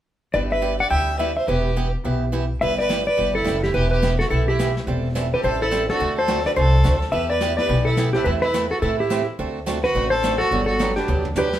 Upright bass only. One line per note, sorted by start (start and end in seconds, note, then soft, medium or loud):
0.34 0.80 G1 medium
0.91 1.36 D2 medium
1.48 1.93 E1 medium
2.05 2.50 B1 medium
2.62 3.07 G1 medium
3.18 3.42 G1 medium
3.46 3.70 F#1 medium
3.74 4.19 E1 medium
4.31 4.76 B1 medium
4.87 5.32 E1 medium
5.44 5.89 A1 medium
6.00 6.45 D2 medium
6.57 6.80 C2 medium
6.84 7.08 D2 medium
7.13 7.58 E2 medium
7.69 8.14 B1 medium
8.26 8.71 E2 medium
8.82 9.27 A2 medium
9.39 9.84 D2 medium
9.95 10.40 A1 medium
10.51 10.96 G1 medium
11.08 11.53 D2 medium